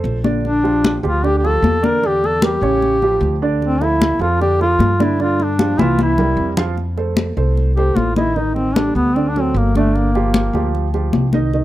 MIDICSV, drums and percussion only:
0, 0, Header, 1, 2, 480
1, 0, Start_track
1, 0, Tempo, 396301
1, 531, Time_signature, 4, 2, 24, 8
1, 14103, End_track
2, 0, Start_track
2, 0, Title_t, "Drums"
2, 62, Note_on_c, 9, 63, 36
2, 183, Note_off_c, 9, 63, 0
2, 296, Note_on_c, 9, 63, 64
2, 417, Note_off_c, 9, 63, 0
2, 544, Note_on_c, 9, 63, 34
2, 665, Note_off_c, 9, 63, 0
2, 788, Note_on_c, 9, 63, 31
2, 909, Note_off_c, 9, 63, 0
2, 1024, Note_on_c, 9, 63, 93
2, 1145, Note_off_c, 9, 63, 0
2, 1270, Note_on_c, 9, 63, 34
2, 1391, Note_off_c, 9, 63, 0
2, 1507, Note_on_c, 9, 63, 32
2, 1628, Note_off_c, 9, 63, 0
2, 1750, Note_on_c, 9, 63, 32
2, 1871, Note_off_c, 9, 63, 0
2, 1987, Note_on_c, 9, 63, 81
2, 2108, Note_off_c, 9, 63, 0
2, 2224, Note_on_c, 9, 63, 71
2, 2346, Note_off_c, 9, 63, 0
2, 2464, Note_on_c, 9, 63, 35
2, 2585, Note_off_c, 9, 63, 0
2, 2711, Note_on_c, 9, 63, 33
2, 2832, Note_off_c, 9, 63, 0
2, 2934, Note_on_c, 9, 63, 86
2, 3055, Note_off_c, 9, 63, 0
2, 3183, Note_on_c, 9, 63, 35
2, 3304, Note_off_c, 9, 63, 0
2, 3420, Note_on_c, 9, 63, 34
2, 3541, Note_off_c, 9, 63, 0
2, 3661, Note_on_c, 9, 63, 34
2, 3782, Note_off_c, 9, 63, 0
2, 3910, Note_on_c, 9, 63, 32
2, 4031, Note_off_c, 9, 63, 0
2, 4387, Note_on_c, 9, 63, 30
2, 4508, Note_off_c, 9, 63, 0
2, 4620, Note_on_c, 9, 63, 32
2, 4741, Note_off_c, 9, 63, 0
2, 4864, Note_on_c, 9, 63, 88
2, 4985, Note_off_c, 9, 63, 0
2, 5104, Note_on_c, 9, 63, 36
2, 5225, Note_off_c, 9, 63, 0
2, 5347, Note_on_c, 9, 63, 32
2, 5468, Note_off_c, 9, 63, 0
2, 5585, Note_on_c, 9, 63, 35
2, 5706, Note_off_c, 9, 63, 0
2, 5817, Note_on_c, 9, 63, 81
2, 5938, Note_off_c, 9, 63, 0
2, 6060, Note_on_c, 9, 63, 76
2, 6181, Note_off_c, 9, 63, 0
2, 6295, Note_on_c, 9, 63, 36
2, 6417, Note_off_c, 9, 63, 0
2, 6536, Note_on_c, 9, 63, 33
2, 6658, Note_off_c, 9, 63, 0
2, 6773, Note_on_c, 9, 63, 86
2, 6894, Note_off_c, 9, 63, 0
2, 7016, Note_on_c, 9, 63, 109
2, 7137, Note_off_c, 9, 63, 0
2, 7251, Note_on_c, 9, 63, 90
2, 7372, Note_off_c, 9, 63, 0
2, 7485, Note_on_c, 9, 64, 67
2, 7606, Note_off_c, 9, 64, 0
2, 7960, Note_on_c, 9, 64, 82
2, 8081, Note_off_c, 9, 64, 0
2, 8206, Note_on_c, 9, 63, 32
2, 8327, Note_off_c, 9, 63, 0
2, 8449, Note_on_c, 9, 63, 32
2, 8570, Note_off_c, 9, 63, 0
2, 8681, Note_on_c, 9, 63, 82
2, 8802, Note_off_c, 9, 63, 0
2, 8929, Note_on_c, 9, 63, 34
2, 9050, Note_off_c, 9, 63, 0
2, 9173, Note_on_c, 9, 63, 31
2, 9294, Note_off_c, 9, 63, 0
2, 9415, Note_on_c, 9, 63, 31
2, 9536, Note_off_c, 9, 63, 0
2, 9647, Note_on_c, 9, 63, 74
2, 9768, Note_off_c, 9, 63, 0
2, 9888, Note_on_c, 9, 63, 68
2, 10009, Note_off_c, 9, 63, 0
2, 10128, Note_on_c, 9, 63, 33
2, 10249, Note_off_c, 9, 63, 0
2, 10370, Note_on_c, 9, 63, 30
2, 10491, Note_off_c, 9, 63, 0
2, 10613, Note_on_c, 9, 63, 91
2, 10735, Note_off_c, 9, 63, 0
2, 10855, Note_on_c, 9, 63, 34
2, 10977, Note_off_c, 9, 63, 0
2, 11096, Note_on_c, 9, 63, 32
2, 11217, Note_off_c, 9, 63, 0
2, 11338, Note_on_c, 9, 63, 31
2, 11459, Note_off_c, 9, 63, 0
2, 11585, Note_on_c, 9, 63, 35
2, 11707, Note_off_c, 9, 63, 0
2, 11814, Note_on_c, 9, 63, 64
2, 11935, Note_off_c, 9, 63, 0
2, 12057, Note_on_c, 9, 63, 32
2, 12179, Note_off_c, 9, 63, 0
2, 12297, Note_on_c, 9, 63, 31
2, 12418, Note_off_c, 9, 63, 0
2, 12525, Note_on_c, 9, 63, 93
2, 12646, Note_off_c, 9, 63, 0
2, 12775, Note_on_c, 9, 63, 34
2, 12896, Note_off_c, 9, 63, 0
2, 13016, Note_on_c, 9, 63, 33
2, 13137, Note_off_c, 9, 63, 0
2, 13249, Note_on_c, 9, 63, 33
2, 13370, Note_off_c, 9, 63, 0
2, 13482, Note_on_c, 9, 63, 82
2, 13603, Note_off_c, 9, 63, 0
2, 13720, Note_on_c, 9, 63, 70
2, 13841, Note_off_c, 9, 63, 0
2, 13970, Note_on_c, 9, 63, 33
2, 14091, Note_off_c, 9, 63, 0
2, 14103, End_track
0, 0, End_of_file